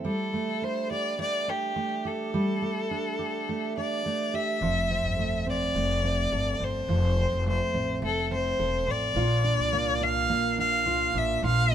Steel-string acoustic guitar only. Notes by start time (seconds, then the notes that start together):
Already playing: A3 C4 A4
0.05 G3
0.34 A3
0.62 D4
0.91 G4
1.19 A3
1.48 D4
1.76 A3
2.05 G4
2.34 G3
2.62 A3
2.91 D4
3.19 G4
3.49 A3
3.77 D4
4.06 A3
4.34 G4
4.62 F2 A4
4.91 C4
5.19 A3
5.47 C4
5.76 A3
6.04 C4
6.32 A4
6.60 C4
6.89 F2 A4
7.17 C4
7.47 A3
7.74 C4
8.03 A3
8.31 C4
8.60 A4
8.88 C4
9.16 A#2 F4
9.44 D4
9.73 A#3
10.01 D4
10.29 A#3
10.58 D4
10.86 F4
11.15 D4
11.43 A#2 F4